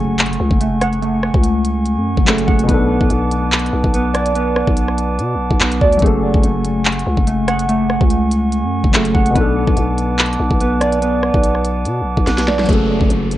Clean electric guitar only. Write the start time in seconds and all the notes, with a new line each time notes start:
Already playing: A3
0.61 A3
0.81 F#5
1.02 A3
2.27 A3
2.47 F#5
2.69 B3
3.94 B3
4.14 D5
4.35 B3
5.60 B3
5.81 D5
6.02 A3
7.27 A3
7.48 F#5
7.69 A3
8.94 A3
9.14 F#5
9.35 B3
10.61 B3
10.81 D5
11.02 B3
12.27 B3
12.48 D5
12.69 A3